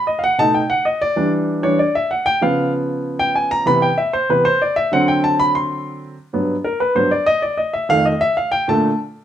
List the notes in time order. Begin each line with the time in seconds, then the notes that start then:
0.07 D#5
0.19 F5
0.24 F#5
0.38 B2 A3 D#4 A5
0.54 G5
0.70 F#5
0.85 D#5
1.02 D5
1.16 E3 G3 D4
1.63 E3 G3 D4 C#5
1.79 D5
1.95 E5
2.11 F#5
2.26 G5
2.41 C#3 F3 B3 F5
3.19 G5
3.35 G#5
3.51 A#5
3.66 C3 E3 B3 B5
3.82 G5
3.98 E5
4.13 C5
4.29 C3 E3 B3 B4
4.45 C5
4.62 D5
4.76 E5
4.92 D3 F#3 C4 F#5
5.08 G5
5.24 A5
5.39 B5
5.55 C6
6.33 G2 F#3 B3
6.64 A#4
6.80 B4
6.95 G2 F#3 B3 C5
7.11 D5
7.26 D#5
7.42 D5
7.58 D#5
7.73 E5
7.89 F2 D#3 A3 F5
8.06 D#5
8.21 E5
8.37 F5
8.52 G5
8.68 A#2 D3 A3 A5